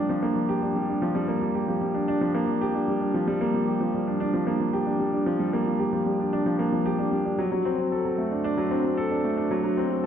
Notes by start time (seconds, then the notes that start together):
Already playing: F3 G3 A#3 D4 G4
0.09 F3
0.23 A#3
0.36 F3
0.49 G4
0.62 D4
0.76 G3
0.89 D4
1.02 F3
1.15 G3
1.28 A#3
1.42 F3
1.55 G4
1.68 F3
1.81 G3
1.94 D4
2.08 D4
2.21 F3
2.35 A#3
2.48 F3
2.61 G4
2.75 D4
2.88 G3
3.01 D4
3.14 F3
3.28 G3
3.41 A#3
3.54 F3
3.68 G4
3.81 F3
3.94 G3
4.07 D4
4.20 D4
4.34 F3
4.47 A#3
4.60 F3
4.73 G4
4.87 D4
5.00 G3
5.13 D4
5.26 F3
5.39 G3
5.53 A#3
5.67 F3
5.79 G4
5.93 F3
6.06 G3
6.19 D4
6.33 D4
6.46 F3
6.59 A#3
6.72 F3
6.86 G4
6.99 D4
7.12 G3
7.25 D4
7.39 F#3
7.52 F#3
7.65 C4
7.78 F#3
7.92 A4
8.05 F#3
8.18 A3
8.31 D4
8.44 D4
8.57 F#3
8.71 C4
8.84 F#3
8.97 A4
9.11 D4
9.24 A3
9.38 D4
9.51 F#3
9.64 F#3
9.77 C4
9.90 F#3